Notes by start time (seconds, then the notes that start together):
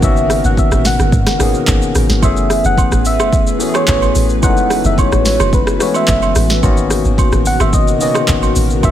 Already playing: B2 C#3 A#3 B3 C#4 F#4 A#4
0.00 G#1 D#3 A#3 B3 C#4, kick, shaker
0.04 F#4 E5
0.17 shaker
0.30 cross-stick, open hi-hat, shaker
0.44 G#1 F#5, shaker
0.57 E5, kick, shaker
0.72 A1, cross-stick, shaker
0.85 F#5, snare, open hi-hat, shaker
0.99 G#1, cross-stick, shaker
1.12 G#2, kick, shaker
1.27 cross-stick, snare, shaker
1.39 G#1 D#3 A#3 B3 C#4 G#4, cross-stick, open hi-hat, shaker
1.54 shaker
1.67 G#1, kick, clap, shaker
1.82 shaker
1.95 A1, cross-stick, open hi-hat, shaker
2.09 G#1, snare, shaker
2.21 F#1 E3 A3 B3 C#4 G#4 B4 E5, kick, high agogo, shaker
2.37 shaker
2.50 cross-stick, open hi-hat, shaker
2.64 F#1 F#5, shaker
2.78 kick, high agogo, shaker
2.92 A1, cross-stick, shaker
3.05 E5, open hi-hat, shaker
3.19 F#1, cross-stick, high agogo, shaker
3.33 kick, shaker
3.47 shaker
3.59 E3 A3 B3 C#4 F#4, open hi-hat, shaker
3.69 G#4
3.74 C#5, cross-stick, high agogo, shaker
3.88 A1 C#5, kick, clap, shaker
4.02 high agogo, shaker
4.15 A1, open hi-hat, shaker
4.30 shaker
4.41 F#1 E3 G#3 B3 C#4 D#4 F#4 F#5, kick, high agogo, shaker
4.49 A3
4.57 shaker
4.70 cross-stick, open hi-hat, shaker
4.85 F#1 E5, shaker
4.98 C#5, kick, high agogo, shaker
5.12 A1, cross-stick, shaker
5.25 C#5, snare, open hi-hat, shaker
5.40 F#1, cross-stick, high agogo, shaker
5.53 B4, kick, shaker
5.67 cross-stick, shaker
5.79 E3 G#3 B3 C#4 E4 C#5, cross-stick, open hi-hat, shaker
5.86 A3
5.94 E5, high agogo, shaker
6.08 F#1 E5, kick, clap, shaker
6.22 high agogo, shaker
6.35 A1, cross-stick, open hi-hat, shaker
6.50 snare, shaker
6.61 G#1 B2 C#3 D#3 A#3 B3 C#4 F#4 A#4, kick, high agogo, shaker
6.77 shaker
6.90 cross-stick, open hi-hat, shaker
7.05 G#1, shaker
7.18 kick, high agogo, shaker
7.32 A1, cross-stick, shaker
7.46 F#5, open hi-hat, shaker
7.60 G#1 E5, cross-stick, high agogo, shaker
7.73 D#5, kick, shaker
7.88 shaker
7.99 D#3 A#3 B3 C#4 F#4 D#5, open hi-hat, shaker
8.15 cross-stick, high agogo, shaker
8.28 A1, kick, clap, shaker
8.43 high agogo, shaker
8.56 A1, open hi-hat, shaker
8.70 shaker
8.82 G#1 D#3 A#3 B3 C#4 F4 E5, kick, high agogo, shaker